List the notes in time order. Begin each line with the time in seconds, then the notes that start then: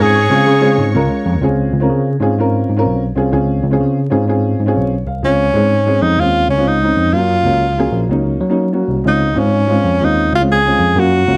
Already playing: G#3 C4 C#4 F4 G#4 C#5 C#6
0.00 G#2 G#4 G#6
0.30 C#3 G#3 C4 C#4 F4 G#4
0.47 C#3
0.61 G#3 C4 C#4 F4 G#4
0.78 G#2
0.94 C#2 G#3 C#4 F4 A#4
1.26 F2
1.34 D#2
1.41 C#2 C4 C#4 F4 G#4
1.73 C#2
1.80 C4 C#4 F4 A#4
1.90 C#3
2.20 G#2 C4 C#4 F4 G#4
2.38 C4 C#4 F4 A#4
2.69 G#2
2.76 C4 C#4 F4 A#4
2.85 B1
3.15 C2 C4 C#4 F4 G#4
3.32 C#2 C4 C#4 F4 G#4
3.63 C#2
3.70 C4 C#4 F4 G#4
3.81 C#3
4.10 G#2 C4 C#4 F4 G#4
4.28 C4 C#4 F4 G#4
4.59 G#2
4.66 C4 C#4 F4 G#4
4.76 B1 C#5
5.06 C2 F5
5.23 C#2 G#3 C4 C#4 F4
5.54 G#2 G#3 C4 C#4 G#4
5.86 G#3 C4 C#4 G#4
6.02 F2 D#4
6.17 D#2 G#3 C4 C#4 F4
6.49 C#2 C#4
6.58 G#3 C4 C#4 F4
6.67 D#4
6.82 G#3 C4 C#4 D#4
6.96 F2
7.13 F#2 F#3 A#3 C#4 F4
7.43 C#2 F#3 A#3 C#4 F4
7.78 F#3 A#3 C#4 G#4
7.91 A#1
8.08 C#2 F#3 A#3 C#4 D#4
8.41 F#3
8.49 F#3 A#3 C#4 D#4
8.72 F#3 A#3 C#4 F#4
8.88 C2
9.04 C#2 G#3 C4 C#4 F4
9.08 D#4
9.34 G#2 G#3 C4 C#4 F4
9.39 C#4
9.67 G#3 C4 C#4 F4
9.84 F2
10.00 D#2 G#3 C4 C#4 D#4 F4
10.32 C#2 F4
10.40 G#3 C4 C#4 F4
10.52 G#4
10.65 G#3 C4 C#4 F4
10.79 F2
10.96 F#2 F#3 A#3 C#4 F4 F#4
11.26 C#2 F#3 A#3 C#4 F4